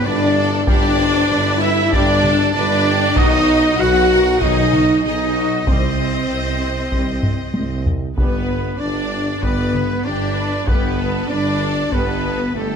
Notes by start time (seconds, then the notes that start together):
0.03 G1 G2 D4 B4 D5
0.37 A4
0.66 G1 G2 D3 G3 D4 G4 D5, taiko
1.00 C5
1.30 G1 G2 B4
1.61 E4 E5
1.91 G1 G2 D3 G3 D4 G4 D5, taiko
2.24 A4, taiko mid
2.54 G1 G2 D4 B4 D5
2.88 G4
3.16 B1 D#3 F#3 D#4 F#4 D#5, taiko
3.78 B1 F#4 B4 F#5
4.12 A#4
4.40 B1 D#3 F#3 D#4 G#4 D#5, taiko
4.73 F#4, taiko mid
5.03 B1 D#4 G#4 D#5
5.35 F#4
5.66 C2 D#3 G3 C4 C5 D#5, taiko
6.29 C2
6.92 C2 D#3 G3, taiko
7.23 taiko low-mid
7.54 C2, taiko high
7.86 taiko low
8.16 G1 D3 G3 B3 B4, taiko
8.78 G1 D4 D5
9.42 G1 D3 G3 B3 B4 D5, taiko
9.74 B4, taiko mid
10.04 G1 D4 G4 D5
10.38 B4
10.66 G1 D3 G3 B3 G4 B4, taiko
10.99 A4
11.28 G1 D4 B4 D5
11.60 A4
11.90 G1 D3 G3 B3 B4, taiko
11.94 B3
12.53 G1 A3 G4 A4